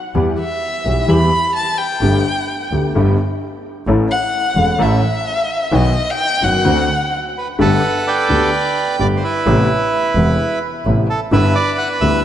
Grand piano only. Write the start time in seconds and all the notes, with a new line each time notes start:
0.15 E2 E3 G3 B3 G4
0.85 B1 B2 E3 G3 B3 G4
1.08 E2 E3 G3 B3 G4
2.02 G1 G2 D3 A3 B3 G4
2.71 D2 D3 A3 B3 G4
2.95 G1 G2 D3 A3 B3 G4
3.87 A1 A2 E3 A3 C#4 A4
4.56 E1 E2 E3 A3 C#4 A4
4.78 A1 A2 E3 A3 C#4 A4
5.72 B1 B2 D#3 F#3 B3 F#4
6.41 F#1 F#2 D#3 F#3 B3 F#4
6.65 D2 D3 A3 C4 F#4
7.59 G1 G2 D3 A3 B3 G4
8.29 D2 D3 A3 B3 G4
8.99 G1 G2 D3 A3 B3 G4
9.46 A1 A2 C3 A3 B3 E4
10.16 E1 E2 C3 A3 B3 E4
10.86 A1 A2 C3 A3 B3 E4
11.32 G1 G2 D3 G3 B3 E4
12.01 D2 D3 G3 B3 E4